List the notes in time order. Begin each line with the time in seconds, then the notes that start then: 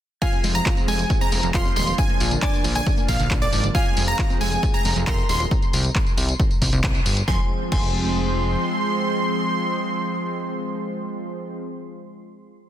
0.22 F3 G#3 C4 F4 F5 G#5, kick, closed hi-hat, tambourine
0.33 C4, closed hi-hat
0.44 F1 G#3, open hi-hat, tambourine
0.55 F3 A#5, closed hi-hat, tambourine
0.66 F4, kick, clap, closed hi-hat, tambourine
0.77 C4, closed hi-hat, tambourine
0.88 F1 G#3 G#4 G#5, open hi-hat, tambourine
0.99 F3, closed hi-hat, tambourine
1.10 F4, kick, closed hi-hat, tambourine
1.21 C4 A#5, closed hi-hat, tambourine
1.32 F1 G#3, open hi-hat, tambourine
1.43 F1 F3, closed hi-hat, tambourine
1.54 F4 F5 C6, kick, clap, closed hi-hat, tambourine
1.65 C4, closed hi-hat, tambourine
1.76 D#1 G#3 C6, open hi-hat, tambourine
1.87 F3, closed hi-hat, tambourine
1.98 A#3 D4 G#5, kick, closed hi-hat, tambourine
2.09 A#3, closed hi-hat
2.20 A#1 F3, open hi-hat, tambourine
2.31 D3, closed hi-hat, tambourine
2.42 D4 D5 G#5, kick, clap, closed hi-hat
2.53 A#3, closed hi-hat, tambourine
2.64 A#1 F3, open hi-hat, tambourine
2.75 D3 G#5, closed hi-hat, tambourine
2.86 D4, kick, closed hi-hat, tambourine
2.97 A#3, closed hi-hat, tambourine
3.08 A#1 F3 F5, kick, open hi-hat, tambourine
3.20 A#1 D3, closed hi-hat, tambourine
3.31 A#1 D4, kick, clap, closed hi-hat, tambourine
3.42 A#3 D5, closed hi-hat, tambourine
3.53 G#1 F3, open hi-hat, tambourine
3.64 D3, closed hi-hat, tambourine
3.75 G#3 C4 F4 F5 G#5, kick, closed hi-hat, tambourine
3.86 C4, closed hi-hat
3.97 F1 G#3, open hi-hat, tambourine
4.08 F3 A#5, closed hi-hat, tambourine
4.19 F4, kick, clap, closed hi-hat, tambourine
4.30 C4, closed hi-hat, tambourine
4.41 F1 G#3 G#4 G#5, open hi-hat, tambourine
4.52 F3, closed hi-hat, tambourine
4.63 F4, kick, closed hi-hat, tambourine
4.74 C4 A#5, closed hi-hat, tambourine
4.85 F1 G#3, open hi-hat, tambourine
4.96 F1 F3, closed hi-hat, tambourine
5.07 F4 A#4 A#5 C6, kick, clap, closed hi-hat, tambourine
5.18 C4, closed hi-hat, tambourine
5.29 D#1 G#3 C6, open hi-hat, tambourine
5.40 F3, closed hi-hat, tambourine
5.51 kick, closed hi-hat, tambourine
5.62 closed hi-hat, tambourine
5.73 C2, open hi-hat, tambourine
5.84 closed hi-hat, tambourine
5.95 kick, clap, closed hi-hat
6.07 closed hi-hat, tambourine
6.17 C2, open hi-hat, tambourine
6.29 closed hi-hat, tambourine
6.40 kick, closed hi-hat, tambourine
6.51 closed hi-hat, tambourine
6.62 C2, kick, open hi-hat, tambourine
6.73 C2, closed hi-hat, tambourine
6.84 kick, clap, closed hi-hat, tambourine
6.95 closed hi-hat, tambourine
7.06 G1, open hi-hat, tambourine
7.17 closed hi-hat, tambourine
7.28 F1 F3 G#3 C4 G#5 C6, kick, snare
7.72 F1 F3 G#5 C6, kick, crash